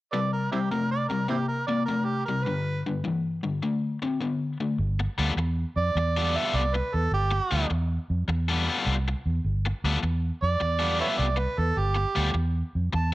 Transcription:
0.13 C3 G3 A4 B4 D5
0.32 A#4
0.52 C3 G3 C4 E4 G4
0.71 C3 A3 A#4
0.91 D5
1.09 C3 G3 A#4
1.28 C3 A#3 C4 E4 G4
1.48 A#4
1.67 C3 A#3 D5
1.86 C3 A3 A#4
2.05 G4
2.25 C3 G3 A#4
2.44 G2 D3 B4
2.86 G2 D3
3.04 G2 E3
3.43 G2 D3
3.63 D3 A3
4.02 D3 C4
4.21 D3 B3
4.60 D3 A3
4.79 G1
5.00 muted overdriven electric guitar stroke
5.18 D2 G3 B3 F4 A4
5.37 E2, muted overdriven electric guitar stroke
5.76 F2 D5
5.95 E2, muted overdriven electric guitar stroke
6.17 G3 B3 F4 A4
6.36 G3 B3 F4 A4 E5
6.45 G3 B3 F4 A4
6.54 C2 D5
6.75 B4, muted overdriven electric guitar stroke
6.94 E2 A4
7.12 G1 G4
7.31 muted overdriven electric guitar stroke
7.51 D2 G3 B3 F4 A4
7.70 E2, muted overdriven electric guitar stroke
8.10 F2
8.28 E2, muted overdriven electric guitar stroke
8.49 G3 B3 F4 A4
8.68 G3 B3 F4 A4
8.78 G3 B3 F4 A4
8.86 C2
9.08 muted overdriven electric guitar stroke
9.26 E2
9.44 G1
9.66 muted overdriven electric guitar stroke
9.84 D2 G3 B3 F4 A4
10.03 E2, muted overdriven electric guitar stroke
10.42 F2 D5
10.60 E2, muted overdriven electric guitar stroke
10.79 G3 B3 F4 A4
10.98 G3 B3 F4 A4 B4 C#5 E5
11.08 G3 B3 F4 A4
11.19 C2 D5
11.36 B4, muted overdriven electric guitar stroke
11.58 E2 A4
11.77 G1 G4
11.95 muted overdriven electric guitar stroke
12.15 D2 G3 B3 F4 A4
12.34 E2, muted overdriven electric guitar stroke
12.75 F2
12.93 E2 A5, muted overdriven electric guitar stroke

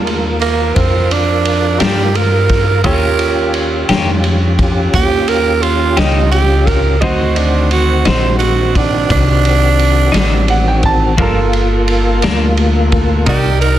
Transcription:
Already playing: D#2 F4 A#4 A5
0.07 ride
0.41 A#3, ride
0.75 F2 C4, kick, ride
1.11 D4, ride
1.45 ride
1.79 G2 F3 A#3 D4 G4, snare, ride
2.15 A#4, ride
2.49 kick, snare, ride
2.83 D#2 D#3 A#3 C#4 F4 G4 A#4 C#5, kick, ride
3.19 ride
3.54 ride
3.89 F2 D#3 A#3 C#4 G4, snare, ride
4.24 ride
4.59 kick, ride
4.94 D#2 G4, kick, ride
5.28 A#4, ride
5.62 F4, ride
5.97 C#2 D#3 A#3 C#4 D#4 G4, snare, ride
6.32 G4, ride
6.66 A#4, kick, ride
7.01 D2 D3 D#3 F#3 C4 D#4 F#4 C5 D#5, kick, ride
7.36 D4, ride
7.71 F#4, ride
8.05 A#1 D3 F#3 C4 D#4 C5, snare, ride
8.39 F#4, ride
8.75 D4, kick, ride
9.10 C2 D4, kick, ride
9.45 ride
9.79 ride
10.12 A1 D3 F#3 C4 D#4, ride
10.16 snare
10.48 F#5, ride
10.68 G5
10.83 A5, kick, ride
11.17 G1 G2 F3 A#3 D4 F4 A4, kick, ride
11.22 A#4
11.53 ride
11.88 ride
12.22 D2 G2 F3 A#3 D4, snare, ride
12.57 ride
12.92 kick, ride
13.26 C2 C3 G3 A#3 D#4 G4 A#4 D5, kick, ride
13.61 A#4, ride

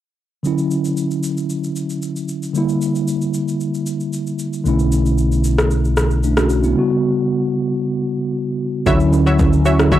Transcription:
0.43 D3 F#3 C#4, shaker
0.47 E4
0.58 shaker
0.71 shaker
0.85 shaker
0.97 shaker
1.11 shaker
1.23 shaker
1.37 shaker
1.50 shaker
1.64 shaker
1.76 shaker
1.90 shaker
2.02 shaker
2.16 shaker
2.28 shaker
2.43 shaker
2.53 D3 G3 A#3, shaker
2.58 E4
2.69 shaker
2.81 shaker
2.95 shaker
3.08 shaker
3.21 shaker
3.34 shaker
3.48 shaker
3.60 shaker
3.74 shaker
3.86 shaker
4.00 shaker
4.13 shaker
4.27 shaker
4.39 shaker
4.53 shaker
4.64 B1 D3 A3 C#4, shaker
4.68 E4
4.79 shaker
4.92 shaker
5.06 shaker
5.18 shaker
5.32 shaker
5.44 shaker
5.58 cross-stick, shaker
5.71 shaker
5.85 shaker
5.97 cross-stick, shaker
6.11 shaker
6.23 A3 D4, shaker
6.37 C#4 F#4, cross-stick, shaker
6.49 shaker
6.64 B3 E4, shaker
6.75 C#3 G3 B3
6.79 F#4
8.86 D2 D3 F#3 C#4 E4 F#4 C#5 E5, kick, low conga, shaker
9.00 shaker
9.13 low bongo, shaker
9.26 F#4 C#5 E5, shaker
9.39 kick, high bongo, shaker
9.53 shaker
9.65 F#4 C#5 E5, shaker
9.79 D3 F#3 C#4 E4, cross-stick, shaker
9.92 F#4 C#5 E5, kick, low conga, shaker

